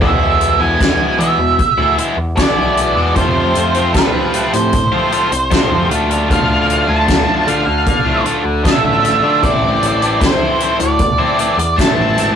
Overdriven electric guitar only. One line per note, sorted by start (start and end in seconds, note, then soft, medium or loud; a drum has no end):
0.01 0.79 E2 medium
0.01 0.79 B2 medium
0.01 0.60 E3 medium
0.01 0.60 G#3 medium
0.01 0.60 B3 medium
0.01 0.59 E4 medium
0.60 0.80 E3 medium
0.60 0.80 G#3 medium
0.60 0.80 B3 medium
0.60 0.80 E4 medium
0.80 1.59 E2 medium
0.80 1.59 B2 medium
0.80 1.17 E3 medium
0.80 1.18 G#3 medium
0.80 1.19 B3 medium
0.80 1.19 E4 medium
1.18 1.39 E3 medium
1.18 1.39 G#3 medium
1.18 1.38 B3 medium
1.18 1.38 E4 medium
1.39 muted overdriven electric guitar stroke soft
1.78 1.96 E3 soft
1.78 1.97 G#3 medium
1.78 1.98 B3 medium
1.78 1.98 E4 medium
1.97 2.17 E3 medium
1.97 2.17 G#3 medium
1.97 2.17 B3 medium
1.97 2.17 E4 medium
2.18 muted overdriven electric guitar stroke soft
2.37 3.14 E2 medium
2.37 3.14 B2 medium
2.37 2.97 E3 medium
2.37 2.96 G#3 medium
2.37 2.96 B3 medium
2.37 2.95 E4 medium
2.96 3.15 E3 medium
2.96 3.14 G#3 medium
2.96 3.14 B3 medium
2.96 3.13 E4 medium
3.16 3.92 F2 medium
3.16 3.93 C3 medium
3.16 3.76 F3 medium
3.16 3.76 A3 medium
3.16 3.74 C4 medium
3.16 3.74 F4 medium
3.74 3.94 F3 medium
3.74 3.95 A3 medium
3.74 3.94 C4 medium
3.74 3.95 F4 medium
3.94 4.73 F2 medium
3.94 4.73 C3 medium
3.94 4.33 F3 medium
3.94 4.34 A3 medium
3.94 4.34 C4 medium
3.94 4.35 F4 medium
4.33 4.54 F3 medium
4.33 4.54 A3 medium
4.33 4.53 C4 medium
4.33 4.53 F4 medium
4.54 muted overdriven electric guitar stroke soft
4.92 5.10 F3 medium
4.92 5.12 A3 medium
4.92 5.12 C4 medium
4.92 5.12 F4 medium
5.12 5.31 F3 medium
5.12 5.32 A3 medium
5.12 5.31 C4 medium
5.12 5.31 F4 medium
5.32 muted overdriven electric guitar stroke soft
5.51 5.88 F2 medium
5.51 5.88 C3 medium
5.51 5.88 F3 medium
5.51 5.90 A3 medium
5.51 5.89 C4 medium
5.51 5.89 F4 medium
5.90 6.27 D3 medium
5.90 6.11 A3 medium
5.90 6.10 D4 medium
5.90 6.08 F4 medium
6.10 6.29 A3 medium
6.10 6.29 D4 medium
6.10 6.29 F4 medium
6.29 7.05 D3 medium
6.29 6.89 A3 medium
6.29 6.87 D4 loud
6.29 6.86 F4 medium
6.87 7.07 A3 medium
6.87 7.07 D4 medium
6.87 7.08 F4 medium
7.07 7.45 D3 medium
7.07 7.47 A3 medium
7.07 7.47 D4 medium
7.07 7.47 F4 medium
7.47 8.06 D3 medium
7.47 7.66 A3 medium
7.47 7.65 D4 medium
7.47 7.65 F4 medium
7.66 muted overdriven electric guitar stroke soft
8.05 8.24 A3 medium
8.05 8.25 D4 medium
8.05 8.25 F4 medium
8.25 8.63 D3 medium
8.25 8.44 A3 medium
8.25 8.44 D4 medium
8.25 8.43 F4 medium
8.45 muted overdriven electric guitar stroke soft
8.64 9.40 D3 medium
8.64 9.23 A3 medium
8.64 9.22 D4 medium
8.64 9.21 F4 medium
9.22 9.41 A3 medium
9.22 9.41 D4 medium
9.22 9.40 F4 medium
9.42 10.20 A2 medium
9.42 10.21 E3 medium
9.42 10.02 A3 medium
9.42 10.01 C4 loud
9.42 10.01 E4 medium
10.01 10.21 A3 medium
10.01 10.21 C4 medium
10.01 10.23 E4 medium
10.21 11.00 A2 medium
10.21 10.60 E3 medium
10.21 10.60 A3 medium
10.21 10.61 C4 medium
10.21 10.62 E4 medium
10.61 10.80 E3 medium
10.61 10.80 A3 medium
10.61 10.79 C4 medium
10.61 10.79 E4 medium
10.80 muted overdriven electric guitar stroke soft
11.19 11.38 A3 medium
11.19 11.39 C4 medium
11.19 11.39 E4 medium
11.38 11.58 E3 medium
11.38 11.58 A3 medium
11.38 11.58 C4 medium
11.38 11.57 E4 medium
11.59 muted overdriven electric guitar stroke soft
11.78 12.36 A2 medium
11.78 12.36 E3 medium
11.78 12.36 A3 medium
11.78 12.36 C4 medium
11.78 12.35 E4 medium